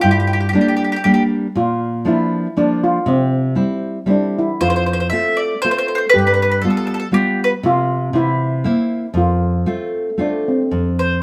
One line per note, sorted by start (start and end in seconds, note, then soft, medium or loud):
0.01 0.53 G2 medium
0.01 0.10 G4 medium
0.06 0.57 E4 medium
0.11 0.18 G4 medium
0.20 0.26 G4 soft
0.27 0.32 G4 soft
0.33 0.39 G4 medium
0.40 0.48 G4 soft
0.49 0.52 G4 medium
0.53 0.95 G3 soft
0.53 0.95 A#3 soft
0.53 0.96 D4 medium
0.53 1.60 D4 medium
0.53 0.60 G4 soft
0.61 0.67 G4 soft
0.68 0.75 G4 medium
0.77 0.83 G4 medium
0.84 0.91 G4 soft
0.92 0.95 G4 medium
0.96 1.03 G4 medium
1.04 1.46 G3 soft
1.04 1.46 A#3 soft
1.04 1.46 D4 medium
1.04 1.13 G4 medium
1.14 1.22 G4 medium
1.55 2.05 A#2 medium
1.55 2.04 F4 medium
2.05 2.46 F3 soft
2.05 2.46 A#3 soft
2.05 2.46 D4 medium
2.05 2.59 E4 medium
2.57 2.97 F3 soft
2.57 2.97 A#3 soft
2.57 2.97 D4 medium
2.57 2.85 D4 medium
2.84 3.08 F4 medium
3.06 3.56 C3 medium
3.06 4.13 C4 medium
3.55 3.97 G3 soft
3.55 3.98 C4 soft
3.55 3.98 E4 medium
4.06 4.49 G3 soft
4.06 4.49 C4 soft
4.06 4.49 E4 soft
4.10 4.38 D4 medium
4.39 4.63 E4 medium
4.61 5.11 F2 medium
4.61 6.10 F4 medium
4.61 4.68 C5 medium
4.70 4.75 C5 medium
4.76 4.84 C5 medium
4.86 4.92 C5 soft
4.93 4.99 C5 medium
5.00 5.07 C5 medium
5.10 5.53 A3 soft
5.10 5.53 C4 soft
5.10 5.54 F4 soft
5.10 5.39 E5 medium
5.37 5.60 D5 medium
5.62 6.04 A3 soft
5.62 6.04 C4 soft
5.62 6.05 F4 medium
5.62 5.70 C5 medium
5.71 5.77 C5 medium
5.78 5.87 C5 medium
5.88 5.94 C5 medium
5.95 5.97 C5 medium
5.95 6.07 C5 medium
6.09 6.17 B4 loud
6.14 6.62 G2 medium
6.14 7.68 G4 medium
6.18 6.26 B4 medium
6.27 6.33 B4 medium
6.34 6.41 B4 medium
6.42 6.50 B4 medium
6.51 6.58 B4 medium
6.62 7.04 G3 soft
6.62 7.04 B3 soft
6.62 7.04 F4 soft
6.62 6.69 A4 medium
6.70 6.76 A4 medium
6.77 6.86 A4 medium
6.87 6.93 A4 medium
6.94 6.98 A4 medium
7.00 7.07 A4 medium
7.11 7.52 G3 soft
7.11 7.53 B3 soft
7.11 7.53 F4 medium
7.11 7.38 G4 medium
7.44 7.50 B4 medium
7.63 8.12 C3 medium
7.63 8.12 F4 loud
8.13 8.63 C3 medium
8.13 9.19 E4 loud
8.64 9.05 A#3 medium
8.64 9.05 C4 soft
8.64 9.06 E4 medium
9.14 9.64 F2 medium
9.14 10.16 F4 medium
9.66 10.09 A3 medium
9.66 10.09 C4 soft
9.66 10.09 F4 soft
10.18 10.61 A3 soft
10.18 10.61 C4 soft
10.18 10.49 D4 medium
10.18 10.61 F4 soft
10.48 10.71 C4 medium
10.71 11.22 F2 medium
10.99 11.21 C5 medium